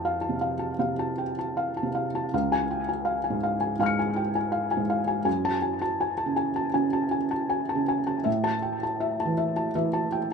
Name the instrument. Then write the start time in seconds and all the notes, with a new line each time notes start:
felt piano
Already playing: F2 F5 G5 A5
0.05 F5
0.21 A5
0.29 C3
0.41 F5
0.59 A5
0.79 C3 F5
0.99 A5
1.18 G5
1.39 A5
1.57 F5
1.77 A5
1.83 C3
1.95 F5
2.15 A5
2.34 C#2 F5
2.52 G#5
2.71 G5
2.89 G#5
3.05 F5
3.24 G#5
3.30 G#2
3.43 F5
3.61 G#5
3.79 G#2 F5 G#5 F6
3.86 C#7
3.99 G#5
4.16 G5
4.35 G#5
4.52 F5
4.71 G#5
4.77 G#2
4.90 F5
5.07 G#5
5.25 F#2 G#5
5.45 A5
5.62 G#5
5.82 A5
6.01 G#5
6.18 A5
6.26 C#3
6.36 G#5
6.56 A5
6.74 C#3 G#5
6.93 A5
7.11 G#5
7.31 A5
7.50 G#5
7.69 A5
7.75 C#3
7.88 G#5
8.07 A5
8.24 A2 E5
8.44 A5
8.62 G5
8.83 A5
9.00 E5
9.20 A5
9.26 E3
9.38 E5
9.56 A5
9.75 E3 E5
9.93 A5
10.12 G5